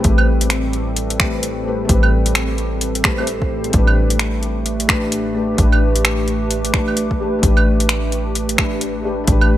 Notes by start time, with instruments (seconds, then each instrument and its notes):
Already playing: ambient pad A2 G3 C4 A4, felt piano C4 G4 B4
0.00 felt piano A3 C4
0.04 808-style bass A1, felt piano G4 B4, kick, closed hi-hat
0.18 claves
0.41 closed hi-hat
0.50 finger snap, closed hi-hat
0.73 closed hi-hat
0.96 closed hi-hat
1.10 closed hi-hat
1.18 felt piano A3 C4 G4, finger snap, kick
1.22 felt piano B4
1.43 closed hi-hat
1.64 felt piano A3 C4 G4
1.68 felt piano B4
1.85 felt piano A3 C4
1.89 808-style bass A1, felt piano G4 B4, kick, closed hi-hat
2.03 claves
2.26 closed hi-hat
2.35 finger snap, closed hi-hat
2.58 closed hi-hat
2.81 closed hi-hat
2.95 closed hi-hat
3.02 felt piano A3 C4 G4 B4, finger snap, kick
3.14 felt piano A3 C4, claves
3.20 felt piano G4 C5
3.27 closed hi-hat
3.42 kick
3.64 closed hi-hat
3.70 808-style bass A1, felt piano A3 D4, kick, closed hi-hat
3.75 felt piano G4 B4
3.81 ambient pad A3
3.87 claves
4.10 closed hi-hat
4.19 finger snap, closed hi-hat
4.27 ambient pad G4
4.43 closed hi-hat
4.66 closed hi-hat
4.74 ambient pad B4
4.80 closed hi-hat
4.87 felt piano A3 D4 G4 B4, finger snap, kick
5.12 closed hi-hat
5.33 felt piano A3 D4 G4
5.37 felt piano B4
5.54 felt piano A3 D4, closed hi-hat
5.58 808-style bass A1, felt piano G4 B4, kick
5.72 claves
5.96 closed hi-hat
6.05 finger snap, closed hi-hat
6.28 closed hi-hat
6.51 closed hi-hat
6.65 closed hi-hat
6.71 felt piano A3 D4 G4 B4, finger snap, kick
6.88 claves
6.97 closed hi-hat
7.11 kick
7.18 felt piano A3 D4 G4 B4
7.39 felt piano A3 D4
7.43 808-style bass A1, felt piano G4 B4, kick, closed hi-hat
7.57 claves
7.80 closed hi-hat
7.89 finger snap, closed hi-hat
8.12 closed hi-hat
8.35 closed hi-hat
8.49 closed hi-hat
8.56 felt piano A3 D4 G4 B4, finger snap, kick
8.81 closed hi-hat
9.03 felt piano A3 D4 G4
9.07 felt piano B4
9.24 808-style bass A1, felt piano A3 D4, kick, closed hi-hat
9.29 felt piano G4 B4
9.41 claves